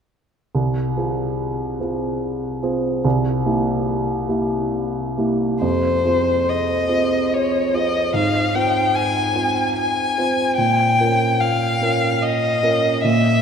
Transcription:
0.55 C2
0.97 C4 F4 G#4
1.80 C4 F4 G#4
2.62 C4 F4 G#4
3.05 C2
3.45 A#3 E4 G4
4.28 A#3 E4 G4
5.17 A#3 E4 G4
5.61 F2 C5
6.05 C4 F4 G#4
6.49 D#5
6.89 C4 F4 G#4
7.34 C#5
7.74 C4 F4 G#4 D#5
8.14 G#2 F5
8.55 C4 F4 C5 G5
8.95 G#5
9.35 C4 F4 C5
9.77 G#5
10.18 C4 F4 C5
10.57 A#2 G5
11.00 C#4 F4 A#4
11.40 F5
11.81 C#4 F4 A#4
12.22 D#5
12.63 C#4 F4 A#4
13.04 A#2 E5

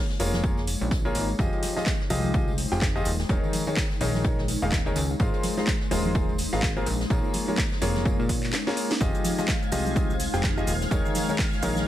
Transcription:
Already playing: G#3 D#4 C#5
0.10 snare, tambourine
0.19 F1 A#3 F4 G#4 A#4 C#5, closed hi-hat, open hi-hat, tambourine, high conga
0.33 snare, tambourine, high conga
0.43 A#3 F4 G#4 A#4 C#5, kick, closed hi-hat, tambourine
0.57 snare, tambourine
0.67 closed hi-hat, open hi-hat, tambourine
0.81 A#1, tambourine
0.91 kick, snare, closed hi-hat, tambourine
1.05 A#3 F4 G#4 A#4 C#5, closed hi-hat, tambourine
1.15 G#1, closed hi-hat, open hi-hat, tambourine
1.28 tambourine
1.39 F1 F3 F4 G4 G#4 D#5, kick, closed hi-hat, tambourine
1.53 closed hi-hat, tambourine
1.62 snare, closed hi-hat, open hi-hat, tambourine, high conga
1.76 F3 F4 G4 G#4 D#5, snare, tambourine, high conga
1.86 kick, snare, clap, closed hi-hat, tambourine
2.00 C5, snare, tambourine
2.10 C2 F3 F4 G4 G#4 D#5, closed hi-hat, open hi-hat, tambourine, high conga
2.24 tambourine, high conga
2.34 F3 F4 G4 G#4 D#5, kick, closed hi-hat, tambourine
2.48 tambourine
2.58 closed hi-hat, open hi-hat, tambourine
2.71 F1 F3 F4 G4 G#4 G5, snare, tambourine
2.81 kick, snare, clap, closed hi-hat, tambourine
2.96 F3 F4 G4 G#4 D#5, closed hi-hat, tambourine
3.05 D#1, closed hi-hat, open hi-hat, tambourine
3.19 snare, tambourine
3.29 D#1 D#3 D#4 G#4 A#4 C#5, kick, closed hi-hat, tambourine
3.43 tambourine
3.53 closed hi-hat, open hi-hat, tambourine, high conga
3.67 D#3 D#4 G#4 A#4 C#5, closed hi-hat, tambourine, high conga
3.74 C#5, kick, snare, clap, open hi-hat, tambourine
3.91 snare, tambourine
4.00 A#1 D#3 D#4 G#4 A#4 C#5, snare, closed hi-hat, open hi-hat, tambourine, high conga
4.14 snare, tambourine, high conga
4.24 D#3 D#4 G#4 A#4 C#5, kick, closed hi-hat, tambourine
4.39 snare, tambourine
4.48 closed hi-hat, open hi-hat, tambourine
4.62 D#1 D#3 D#4 G#4 A#4 F5
4.72 kick, snare, clap, closed hi-hat, tambourine
4.86 D#3 D#4 G#4 A#4 C#5, closed hi-hat, tambourine
4.96 C#2, closed hi-hat, open hi-hat, tambourine
5.10 tambourine
5.19 G#1 G#3 F4 G#4 A#4 C5, kick, closed hi-hat, tambourine
5.34 C5, closed hi-hat, tambourine
5.43 snare, closed hi-hat, open hi-hat, tambourine, high conga
5.57 G#3 F4 G#4 A#4 C5, snare, tambourine, high conga
5.67 kick, snare, clap, closed hi-hat, tambourine
5.80 snare, tambourine
5.91 D#1 G#3 F4 G#4 A#4 C5, closed hi-hat, open hi-hat, tambourine, high conga
6.05 tambourine, high conga
6.15 G#3 F4 G#4 A#4 C5, kick, closed hi-hat, tambourine
6.29 tambourine
6.38 closed hi-hat, open hi-hat, tambourine
6.52 G#1 G#3 F4 G#4 A#4 F5, snare, tambourine
6.62 kick, snare, clap, closed hi-hat, tambourine
6.76 A#3 F4 G#4 A#4 C5, closed hi-hat, tambourine
6.86 A#1, closed hi-hat, open hi-hat, tambourine
7.00 snare, tambourine
7.10 A#1 A#3 F4 G#4 A#4 C#5, kick, closed hi-hat, tambourine
7.24 tambourine
7.34 closed hi-hat, open hi-hat, tambourine, high conga
7.47 A#3 F4 G#4 A#4 C#5, closed hi-hat, tambourine, high conga
7.57 kick, snare, clap, open hi-hat, tambourine
7.72 snare, tambourine
7.81 F1 A#3 F4 G#4 A#4 C#5, snare, closed hi-hat, open hi-hat, tambourine, high conga
7.95 snare, tambourine, high conga
8.05 A#3 F4 G#4 A#4, kick, closed hi-hat, tambourine
8.19 A#2, tambourine
8.29 kick, closed hi-hat, open hi-hat, tambourine
8.43 snare, clap, tambourine
8.53 snare, clap, closed hi-hat, tambourine
8.67 A#3 F4 G#4 A#4 C#5, snare, closed hi-hat, tambourine
8.76 closed hi-hat, open hi-hat, tambourine
8.90 snare, tambourine
9.01 F1 F3 F4 G4 G#4 D#5 F5 G#6, kick, closed hi-hat, tambourine, shaker
9.14 closed hi-hat, tambourine, shaker
9.24 snare, closed hi-hat, open hi-hat, tambourine, high conga, shaker
9.34 C5
9.38 F3 F4 G4 G#4 D#5, snare, tambourine, high conga, shaker
9.48 kick, snare, clap, closed hi-hat, tambourine, shaker
9.62 snare, tambourine, shaker
9.72 C2 F3 F4 G4 G#4 D#5, snare, closed hi-hat, open hi-hat, tambourine, high conga, shaker
9.86 tambourine, high conga, shaker
9.96 F3 F4 G4 G#4 D#5, kick, closed hi-hat, tambourine, shaker
10.10 tambourine, shaker
10.20 closed hi-hat, open hi-hat, tambourine, shaker
10.33 F1 F3 F4 G4 G#4 G5, snare, tambourine, shaker
10.43 kick, snare, clap, closed hi-hat, tambourine, shaker
10.57 F3 F4 G4 G#4 D#5, closed hi-hat, tambourine, shaker
10.67 D#1, closed hi-hat, open hi-hat, tambourine, shaker
10.81 snare, tambourine, shaker
10.91 D#1 D#3 D#4 G#4 A#4 C#5, kick, closed hi-hat, tambourine, shaker
11.05 tambourine, shaker
11.15 closed hi-hat, open hi-hat, tambourine, high conga, shaker
11.29 D#3 D#4 G#4 A#4 C#5, closed hi-hat, tambourine, high conga, shaker
11.38 kick, snare, clap, open hi-hat, shaker
11.52 snare, tambourine, shaker
11.63 A#1 D#3 D#4 G#4 A#4 C#5, closed hi-hat, open hi-hat, tambourine, high conga, shaker
11.76 snare, tambourine, high conga, shaker

